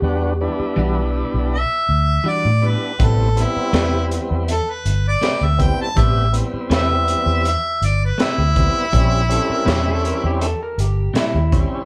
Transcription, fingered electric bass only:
X:1
M:4/4
L:1/16
Q:"Swing 16ths" 1/4=81
K:Ador
V:1 name="Fingered electric bass" clef=bass
E,,3 z B,,,3 B,,,2 z D,,2 z A,,2 z | A,,,3 z E,,3 E,,2 z G,,,2 z D,,2 z | A,,,3 z E,,3 E,,2 z G,,,2 z D,,2 z | ^A,,,3 z E,,3 E,,2 z G,,,2 z ^D,,2 z |]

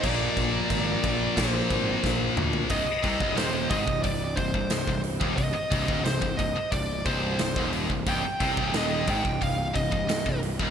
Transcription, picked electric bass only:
X:1
M:4/4
L:1/16
Q:1/4=89
K:Cm
V:1 name="Picked electric bass" clef=bass
B,,,2 B,,,2 A,,,2 B,,,2 B,,,2 A,,,2 B,,,2 D,,2 | C,,, z C,, C,,, E,,,2 A,,, C,,, C,,,2 C,,, C,,, C,,, C,,,2 E,,, | C,,, z C,,, D,,, C,,, C,,, C,,, z C,,,2 C,,,2 C,,, E,,,2 C,,, | C,,, z C,, C,,, E,,,2 A,,, C,,, C,,,2 C,,, C,,, C,,, C,,,2 E,,, |]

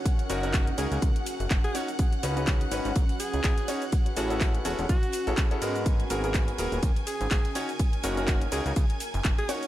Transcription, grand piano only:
X:1
M:4/4
L:1/16
Q:"Swing 16ths" 1/4=124
K:F#mix
V:1 name="Grand piano"
z2 [CDFA] [CDFA]3 [CDFA] z6 z [CDFc] z | z2 [CDFB] [CDFB]3 [CDFB] z6 z [CDFc] z | z2 [CEG=A] [CEGA]3 [CEGA] z4 [CEGA]2 [CEGA] [B,FG^A]2- | [B,FGA]2 [B,FGA] [B,FGA]3 [B,FGA] z6 z [CDFc] z |
z2 [CDFA] [CDFA]3 [CDFA] z6 z [CDFc] z |]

